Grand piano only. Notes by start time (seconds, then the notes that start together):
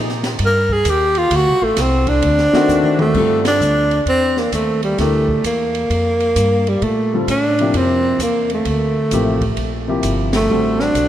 2.53 D#3 A3 C4 D4 F#4
3.15 D3 G3 C4 F4 A4
4.99 E3 A3 D4 G4 A#4
7.13 D3 G3 C4 F4 A4
7.60 C3 F3 A#3 E4 G4
9.12 C3 F3 A#3 E4 G4
9.88 C3 F3 A#3 E4 G4
10.50 D3 G3 C4 F#4 A4